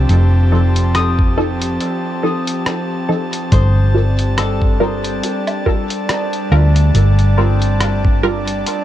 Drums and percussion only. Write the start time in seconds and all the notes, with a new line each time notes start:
0.09 closed hi-hat
0.76 closed hi-hat
0.95 cross-stick, closed hi-hat
1.19 kick
1.62 closed hi-hat
1.80 closed hi-hat
2.47 closed hi-hat
2.66 cross-stick, closed hi-hat
3.33 closed hi-hat
3.52 kick, closed hi-hat
4.19 closed hi-hat
4.38 cross-stick, closed hi-hat
4.62 kick
5.04 closed hi-hat
5.23 closed hi-hat
5.47 closed hi-hat, low woodblock
5.66 kick
5.90 closed hi-hat
6.09 cross-stick, closed hi-hat
6.33 closed hi-hat
6.76 closed hi-hat
6.95 closed hi-hat
7.19 closed hi-hat
7.62 closed hi-hat
7.80 cross-stick, closed hi-hat
8.05 kick
8.48 closed hi-hat
8.66 closed hi-hat